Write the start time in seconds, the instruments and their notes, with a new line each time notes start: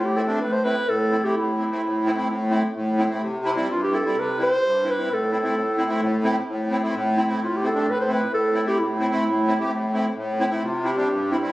Already playing: accordion A2
0.05 clarinet G4
0.15 accordion C4 E4, clarinet A4
0.27 accordion A3 C4 D4
0.38 accordion A2, clarinet B4
0.52 clarinet C5
0.64 accordion A3 C4 E4, clarinet B4
0.88 accordion A2, clarinet A4
1.11 accordion C4 E4
1.23 accordion A3 C4 E4, clarinet G4
1.35 accordion A2, clarinet E4
1.58 accordion C4 E4
1.70 accordion A3 C4 E4
1.83 accordion A2
2.06 accordion C4 E4
2.16 accordion A3 C4 E4
2.27 accordion A2
2.50 accordion A3 C4 E4
2.75 accordion A2
2.98 accordion C4 E4
3.09 accordion A3 C4 E4
3.20 accordion C3
3.45 accordion C4 E4
3.56 accordion G3 C4 E4
3.69 accordion G2, clarinet F4
3.84 clarinet G4
3.92 accordion C4 E4, clarinet A4
4.05 accordion G3 C4 E4
4.14 accordion C3
4.19 clarinet B4
4.38 accordion G3 C4 E4
4.43 clarinet C5
4.62 accordion G2
4.83 accordion C4 E4
4.90 clarinet B4
4.97 accordion G3 C4 E4
5.08 accordion A2
5.14 clarinet A4
5.31 accordion C4 E4
5.43 accordion A3 C4 E4
5.55 accordion A2
5.77 accordion C4 E4
5.88 accordion A3 C4 E4
6.00 accordion A2
6.23 accordion A3 C4 E4
6.47 accordion A2
6.71 accordion C4 E4
6.82 accordion A3 C4 E4
6.94 accordion A2
7.17 accordion C4 E4
7.27 accordion A3 C4 E4
7.38 accordion A2
7.44 clarinet F4
7.56 clarinet G4
7.62 accordion C4 E4
7.67 clarinet A4
7.74 accordion A3 C4 D4
7.86 accordion A2
7.91 clarinet B4
8.01 clarinet C5
8.07 accordion A3 C4 E4
8.12 clarinet B4
8.31 accordion A2, clarinet A4
8.53 accordion C4 E4
8.65 accordion A3 C4 E4, clarinet G4
8.77 accordion A2, clarinet E4
9.00 accordion C4 E4
9.11 accordion A3 C4 E4
9.24 accordion A2
9.48 accordion C4 E4
9.59 accordion A3 C4 G4
9.70 accordion A2
9.93 accordion A3 C4 E4
10.16 accordion A2
10.40 accordion C4 E4
10.50 accordion A3 C4 E4
10.61 accordion C3, clarinet F4
10.84 accordion C4 E4, clarinet G4
10.96 accordion G3 C4 D4
11.08 accordion G2
11.31 accordion C4 E4, clarinet E4
11.41 accordion G3 C4 E4